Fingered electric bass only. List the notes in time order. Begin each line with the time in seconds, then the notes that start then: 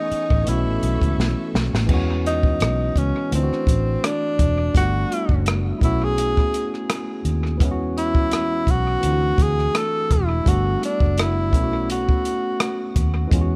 0.11 muted fingered electric bass stroke
0.31 A1
0.48 B1
0.66 A1
0.83 B1
1.02 C#2
1.18 B1
1.55 B1
1.74 A1
1.90 E2
2.61 B1
2.96 C#2
3.32 D2
3.67 A1
4.39 E1
4.75 G1
5.30 F#1
5.82 B1
7.25 D#2
7.61 E2
8.67 B1
9.03 D2
9.39 D2
10.11 E1
10.47 G1
11.01 F#1
11.53 B1
12.96 D#2
13.32 E2